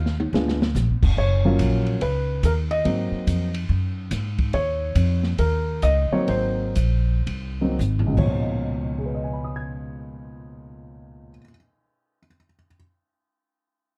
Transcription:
Already playing: D#2 F5
0.06 snare
0.20 high tom
0.33 D2 G#3 B3 D4 F4, snare
0.48 snare
0.62 snare
0.75 A#1, snare, hi-hat pedal
0.89 G#1
1.03 F1, kick, crash
1.17 F#1 C#5, kick
1.45 F#3 A#3 C#4 F4
1.59 A#1, kick, hi-hat pedal, ride
1.86 ride
2.01 C#2 B4, kick, ride
2.43 D#2 A#4, kick, hi-hat pedal, ride
2.71 D#5, ride
2.85 G#2 F#3 A#3 C4 D#4, kick, ride
3.11 muted upright bass stroke
3.27 F2, kick, hi-hat pedal, ride
3.54 ride
3.69 F#2, kick
4.11 G#2, kick, snare, hi-hat pedal, ride
4.38 kick, ride
4.53 D#2 C#5, kick, ride
4.95 F2, kick, hi-hat pedal, ride
5.23 snare
5.38 D#2 A#4, kick, ride
5.82 C#2 D#5, kick, hi-hat pedal, ride
6.11 F#3 A#3 C4 D#4 C#5, muted upright bass stroke
6.28 G#1 C5, kick, ride
6.75 A#1, kick, hi-hat pedal, ride
7.27 C2, kick, ride
7.61 F#3 A#3 C4 D#4
7.79 G#1, hi-hat pedal
7.99 floor tom
8.06 C#2
8.13 B2
8.17 C#2 F3 C#5, kick, crash
8.25 A#2
8.31 D#4
8.98 G#4
9.06 B4
9.14 D#5
9.24 G#5
9.33 B5
9.44 D#6
9.56 G#6

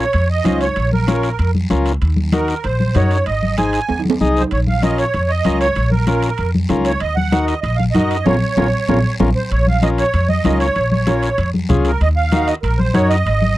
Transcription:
0.00 C#5
0.13 F2, high conga, high timbale, long guiro
0.31 D#5
0.44 C#2 C#4 F4 C5, high conga, high timbale, low timbale, short guiro
0.61 C#5, high timbale, short guiro
0.76 A#1, high conga, high timbale, long guiro
0.93 A#4, high conga
1.07 C#4 F4 C#5, high conga, high timbale, short guiro
1.23 high timbale, short guiro
1.39 F2, high conga, high timbale, long guiro
1.55 high conga
1.70 C#2 C#4 F4 A#4, high conga, high timbale, short guiro
1.86 high timbale, short guiro
2.01 D#2, high conga, high timbale, long guiro
2.16 high conga
2.32 D#4 F#4 A#4, high conga, high timbale, short guiro
2.48 high timbale, short guiro
2.64 A#1 C5, high conga, high timbale, long guiro
2.80 high conga
2.95 F#2 D#4 F#4 A#4 C#5, high conga, high timbale, low timbale, short guiro
3.11 high timbale, short guiro
3.26 G#1 D#5, high conga, high timbale, long guiro
3.43 high conga
3.58 D#4 G#4 C5 G#5, high conga, high timbale, short guiro
3.73 high timbale, short guiro
3.89 D#2, high conga, high timbale, long guiro
3.99 low timbale
4.05 high conga
4.10 high timbale
4.21 C2 D#4 G#4 D#5, high conga, short guiro
4.37 C5, short guiro
4.41 low timbale
4.51 A#1 C#5, high conga, high timbale, long guiro
4.67 F5, high conga
4.82 C#4 F4 A#4 D#5, high conga, high timbale, short guiro
4.98 C#5, high timbale, short guiro
5.14 F2, high conga, high timbale, long guiro
5.29 D#5
5.45 C#2 C#4 F4 A#4, high conga, high timbale, short guiro
5.60 C#5, high timbale, short guiro
5.76 A#1, high conga, high timbale, long guiro
5.91 A#4, high conga
6.07 C#4 F4 A#4, high conga, high timbale, short guiro
6.22 high timbale, short guiro
6.38 F2, high conga, high timbale, long guiro
6.55 high conga
6.69 C#2 C#4 F4 A#4, high conga, high timbale, low timbale, short guiro
6.85 C#5, high timbale, short guiro
7.00 D#2 D#5, high conga, high timbale, long guiro
7.16 F#5, high conga
7.32 D#4 F#4 A#4, high conga, high timbale, short guiro
7.46 D#5, high timbale, short guiro
7.61 A#1 D#5, high conga, high timbale, long guiro
7.76 F5, high conga
7.92 F#2 D#4 F#4 A#4 D#5, high conga, high timbale, low timbale, short guiro
8.11 high timbale, short guiro
8.24 A#1 C#4 F4 A#4 C#5, high conga, high timbale, long guiro
8.57 A#1 C#4 F4 A#4, high conga, high timbale, long guiro
8.89 A#1 C#4 F4 A#4, high conga, high timbale, long guiro
9.20 A#1 C#4 F4 A#4, high conga, high timbale, long guiro
9.36 C5
9.51 A#1 C#5, high conga, high timbale, long guiro
9.67 F5, high conga
9.82 C#4 F4 A#4 D#5, high conga, high timbale, short guiro
9.98 C#5, high timbale, short guiro
10.14 F2, high conga, high timbale, long guiro
10.29 D#5, high conga
10.44 C#2 C#4 F4 A#4, high conga, high timbale, low timbale, short guiro
10.60 C#5, high timbale, short guiro
10.76 A#1, high conga, high timbale, long guiro
10.91 C#5, high conga
11.07 C#4 F4 A#4, high conga, high timbale, short guiro
11.23 high timbale, short guiro
11.38 F2, high conga, high timbale, long guiro
11.54 high conga
11.69 C#2 C#4 F4 G#4, high conga, low conga, high timbale, short guiro
11.85 A#4, high timbale, short guiro
12.01 D#2 D#5, high conga, high timbale, long guiro
12.16 F5
12.32 D#4 F#4 A#4, high conga, high timbale, short guiro
12.48 D#5, high timbale, short guiro
12.62 A#1 A#4, high conga, high timbale, long guiro
12.78 C5, high conga
12.94 F#2 D#4 F#4 A#4 C#5, high conga, high timbale, short guiro
13.09 D#5, high timbale, short guiro
13.26 G#1, high conga, high timbale, long guiro
13.42 high conga

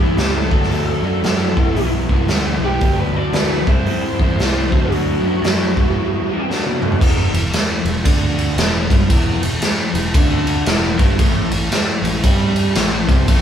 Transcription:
0.00 E2 C3 G3 C4 E4
0.17 C#2 C3 G3 C4 E4 G4, snare, open hi-hat
0.35 A4
0.51 D2 D3 F#3 A3 D4, kick
0.63 snare
0.69 D2 D3 F#3 A3 D4, open hi-hat
1.02 F#2 D3 F#3 A3 D4
1.22 F#2 D3 F#3 A3 D4, snare, open hi-hat
1.56 E1 E3 G3 B3 E4, kick
1.74 B1 E3 G3 B3 E4, open hi-hat
2.09 C2 E3 G3 B3 E4, kick
2.27 D2 E3 G3 B3 E4, snare, open hi-hat
2.59 B1 E3 G3
2.63 B3 E4 G4
2.81 D2 D3 F#3 A3 D4, kick, open hi-hat
2.99 B4
3.13 D2 D3 F#3 A3 D4 D5
3.32 D2 D3 F#3 A3 D4 B4, snare, open hi-hat
3.67 C2 C3 G3 C4 E4, kick
3.71 C5
3.85 G2 C3 G3 C4 E4, open hi-hat
4.19 E2 C3 G3 C4 E4, kick
4.38 C2 C3 G3 C4 E4, snare, open hi-hat
4.71 D2 D3 F#3 A3 D4, kick
4.90 D2 D3 F#3 A3 D4 F#4, open hi-hat
5.23 F#2 D3 F#3 A3 D4
5.42 F#2 D3 F#3 A3 D4, snare, open hi-hat
5.76 E1 E3 G3 B3 E4, kick
5.96 E3 G3 B3 E4
6.28 E3 G3 B3 E4
6.47 B2 F#3 B3 D4, snare
6.66 high tom
6.81 B2 F#3 B3 D4, mid tom
6.92 floor tom
7.00 E1 E2 E3, kick, crash
7.32 E1 E2, ride
7.52 muted picked electric bass stroke, muted overdriven electric guitar stroke, snare, ride
7.85 E1 E2, ride
8.05 D2 D3 D4, kick, ride
8.39 ride
8.56 E1 E2 E3, snare, ride
8.90 G1 G2 G3, kick, ride
9.09 E1 E2 E3, kick, ride
9.42 E1 E2, ride
9.62 muted overdriven electric guitar stroke, muted picked electric bass stroke, snare, ride
9.94 E1 E2, ride
10.14 D2 D3 D4, kick, ride
10.47 ride
10.65 E1 E2 E3, snare, ride
10.99 G1 G2 G3, kick, ride
11.18 A1 A2 A3, kick, ride
11.51 A1 A2, ride
11.71 muted picked electric bass stroke, muted overdriven electric guitar stroke, snare, ride
12.02 A1 A2, ride
12.23 G2 G3 G4, kick, ride
12.56 ride
12.75 A1 A2 A3, snare, ride
13.08 C2 C3 C4, kick, ride
13.28 A1 A2 A3, kick, ride

